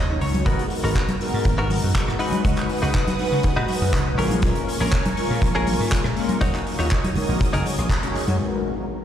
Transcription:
Already playing: slap bass D#2, analog synth pad C#5 D#6, clean electric guitar D#5
0.09 analog polysynth F#3 C#4 D#4 C#5, muted clean electric guitar stroke
0.21 slap bass C#2, clean electric guitar C#5, open hi-hat
0.34 closed hi-hat, high conga
0.46 slap bass G#1, analog polysynth G#3 B3 D#4 F#4 A#4, clean electric guitar B3 F#4 A#4, analog synth pad A#4, kick, closed hi-hat
0.59 closed hi-hat
0.70 open hi-hat
0.83 slap bass G#1, analog polysynth G#3 B3 D#4 F#4 A#4, clean electric guitar B3 F#4 A#4, cross-stick
0.95 kick, clap
1.08 closed hi-hat, high conga
1.20 analog polysynth G#3 B3 D#4 F#4 A#4, open hi-hat
1.34 slap bass G#2
1.45 slap bass G#1, muted clean electric guitar stroke, kick, closed hi-hat
1.58 analog polysynth G#3 B3 D#4 F#4 A#4, clean electric guitar B3 F#4 A#4
1.70 open hi-hat, high conga
1.83 slap bass F#2, muted clean electric guitar stroke
1.94 analog polysynth G#3 B3 D#4 F#4 A#4, muted clean electric guitar stroke, kick, clap, closed hi-hat
2.07 slap bass G#2, muted clean electric guitar stroke, cross-stick
2.19 analog polysynth G#3 C#4 D#4 F#4 B4, clean electric guitar D#4 F#4 B4, analog synth pad B4 F#5 D#6, open hi-hat
2.32 closed hi-hat, high conga
2.44 slap bass C#2, analog polysynth G#3 C#4 D#4 F#4, kick, closed hi-hat
2.57 clap, closed hi-hat
2.69 open hi-hat
2.82 slap bass C#2, analog polysynth G#3 C#4 D#4 F#4 B4, clean electric guitar D#4 F#4 B4, cross-stick
2.94 kick, clap, closed hi-hat
3.08 closed hi-hat, high conga
3.18 analog polysynth G#3 C#4 D#4 F#4 B4, muted slap bass stroke, open hi-hat
3.32 slap bass C#3
3.43 muted clean electric guitar stroke, kick, closed hi-hat
3.56 slap bass A#2, analog polysynth G#3 C#4 D#4 F#4 B4, clean electric guitar D#4 F#4 B4
3.68 open hi-hat, high conga
3.81 slap bass F#2, muted clean electric guitar stroke
3.93 slap bass C#2, analog polysynth C#4 D#4 F#4, muted clean electric guitar stroke, kick, clap, closed hi-hat
4.06 muted clean electric guitar stroke
4.18 slap bass A#1, analog polysynth G#3 A#3 C#4 F4 A#4, clean electric guitar C#4 G#4 A#4, analog synth pad A#4 G#5 C#6, open hi-hat
4.31 closed hi-hat, high conga
4.42 slap bass A#1, analog polysynth G#3 A#3 C#4 F4 A#4, kick, closed hi-hat
4.55 closed hi-hat
4.69 open hi-hat
4.80 slap bass A#1, analog polysynth G#3 A#3 C#4 F4 A#4, clean electric guitar C#4 G#4 A#4, cross-stick
4.92 kick, clap, closed hi-hat
5.05 closed hi-hat, high conga
5.17 analog polysynth G#3 A#3 C#4 F4 A#4, open hi-hat
5.30 slap bass A#2
5.42 slap bass A#1, muted clean electric guitar stroke, kick, closed hi-hat
5.55 analog polysynth G#3 A#3 C#4 F4 A#4, clean electric guitar C#4 G#4 A#4
5.67 open hi-hat, high conga
5.80 slap bass G#2, muted clean electric guitar stroke
5.91 analog polysynth G#3 A#3 C#4 F4 A#4, muted clean electric guitar stroke, kick, clap, closed hi-hat
6.04 slap bass A#2, muted clean electric guitar stroke, cross-stick
6.16 analog polysynth G#3 A#3 C#4 F4 A#4, open hi-hat
6.29 closed hi-hat, high conga
6.41 slap bass D#2, analog polysynth F#3 C#4 D#4 A#4 F5, clean electric guitar D#4 F#4 C#5, analog synth pad C#5 D#6, kick, closed hi-hat
6.54 clap, closed hi-hat
6.67 open hi-hat
6.79 slap bass D#2, analog polysynth F#3 C#4 D#4 F4 A#4, clean electric guitar D#4 F#4 C#5, cross-stick
6.91 kick, clap, closed hi-hat
7.04 closed hi-hat, high conga
7.16 analog polysynth G#3 C#4 D#4 F#4 A#4, muted slap bass stroke, open hi-hat, low conga
7.29 slap bass A#1
7.40 analog synth pad A#4 G#5, muted clean electric guitar stroke, kick, closed hi-hat
7.53 slap bass F#1, analog polysynth G#3 C#4 D#4 F#4 A#4, clean electric guitar D#4 G#4 A#4, closed hi-hat
7.65 analog polysynth G#3 C#4 D#4 F#4 C#5, open hi-hat, high conga
7.78 slap bass A#1, muted clean electric guitar stroke, cross-stick, closed hi-hat
7.90 muted clean electric guitar stroke, kick, clap, closed hi-hat
8.02 analog polysynth G#3 C#4 D#4 F#4 C#5, muted clean electric guitar stroke, closed hi-hat
8.15 muted slap bass stroke, open hi-hat
8.28 slap bass F#2, closed hi-hat, high conga
8.39 analog polysynth G#3 B3 D#4 F#4 A#4, analog synth pad G#3 B3 F#4 A#5, impact
8.77 analog polysynth G#3 B3 D#4 F#4 A#4

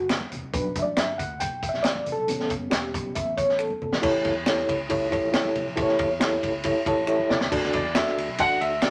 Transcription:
0.00 fingered electric bass F#1
0.09 finger snap, snare, closed hi-hat
0.21 high conga
0.32 fingered electric bass E1, closed hi-hat, muted conga, low conga
0.43 fingered electric bass C2
0.53 fingered electric bass B1, reed electric piano F#3 G3 D4 B4, kick, closed hi-hat, muted conga, low conga
0.75 fingered electric bass A1, reed electric piano E5, kick, closed hi-hat, high conga
0.82 reed electric piano D5
0.97 fingered electric bass G1, reed electric piano E5, finger snap, snare, closed hi-hat, muted conga, high conga
1.18 fingered electric bass D2, reed electric piano F#5, kick, closed hi-hat, muted conga, low conga
1.40 fingered electric bass B1, reed electric piano G5, kick, closed hi-hat, muted conga, high conga
1.63 kick, closed hi-hat
1.69 reed electric piano E5
1.74 fingered electric bass B1, snare
1.83 fingered electric bass A1, reed electric piano D5, finger snap, snare, closed hi-hat
1.95 high conga
2.06 closed hi-hat, low conga
2.12 reed electric piano A4
2.17 fingered electric bass B1
2.27 fingered electric bass A1, reed electric piano G3 B3 C#4, closed hi-hat, muted conga, low conga
2.40 snare
2.50 fingered electric bass F#1, kick, closed hi-hat, high conga
2.70 fingered electric bass E1, reed electric piano G4, finger snap, snare, closed hi-hat, high conga
2.94 fingered electric bass B1, kick, closed hi-hat, muted conga, low conga
3.15 fingered electric bass A1, reed electric piano E5, kick, closed hi-hat, muted conga, high conga
3.37 reed electric piano C#5, kick, closed hi-hat
3.49 fingered electric bass A1, snare
3.59 reed electric piano A4, finger snap
3.70 high conga
3.82 fingered electric bass G1, muted conga, low conga
3.92 fingered electric bass A#1, snare
4.02 fingered electric bass A1, reed electric piano E4 G4 A4 C#5, kick, crash, muted conga, low conga
4.25 fingered electric bass E2, kick, ride, muted conga, high conga
4.46 reed electric piano E4 G4 A4 C#5, finger snap, snare, ride, high conga
4.58 snare
4.69 fingered electric bass C#2, kick, ride, muted conga
4.89 fingered electric bass C#2, reed electric piano E4 G4 A4 C#5, kick, ride, muted conga, high conga
5.11 reed electric piano E4 G4 A4 C#5, kick, ride, muted conga
5.24 fingered electric bass A1
5.32 reed electric piano E4 G4 A4 C#5, finger snap, snare, ride
5.45 high conga
5.55 fingered electric bass B1, ride, low conga
5.67 fingered electric bass A#1
5.76 fingered electric bass A1, reed electric piano E4 G4 A4 C5, kick, ride, muted conga, low conga
5.82 reed electric piano C#5
5.88 snare
5.99 fingered electric bass E2, kick, ride, muted conga, high conga
6.20 reed electric piano E4 G4 A4 C#5, finger snap, snare, ride, muted conga, high conga
6.43 fingered electric bass C#2, kick, ride, muted conga
6.64 reed electric piano E4 G4 A4 C#5, kick, ride, muted conga, high conga
6.86 fingered electric bass C#2, reed electric piano E4 G4 A4 C#5 A5, kick, ride, muted conga
6.97 fingered electric bass A1
7.07 reed electric piano E4 G4 A4 C#5 E5, finger snap, muted conga
7.19 high conga
7.30 fingered electric bass B1, grand piano D5, snare, muted conga, low conga
7.41 fingered electric bass D#2, snare
7.51 fingered electric bass D2, reed electric piano D4 F#4 A4 D5, kick, crash, muted conga, low conga
7.63 snare
7.73 fingered electric bass E2, grand piano D5, kick, ride, muted conga, high conga
7.95 reed electric piano D4 F#4 A4 D5, grand piano E5, finger snap, snare, ride, muted conga, high conga
8.07 snare
8.18 fingered electric bass D2, ride
8.28 fingered electric bass B1
8.38 fingered electric bass A1, reed electric piano D4 F#4 A4 D5, grand piano F#5, kick, ride, high conga
8.61 fingered electric bass D2, grand piano E5, ride, muted conga
8.82 fingered electric bass B1, reed electric piano D4 F#4 A4 D5, grand piano D5, finger snap, snare, ride

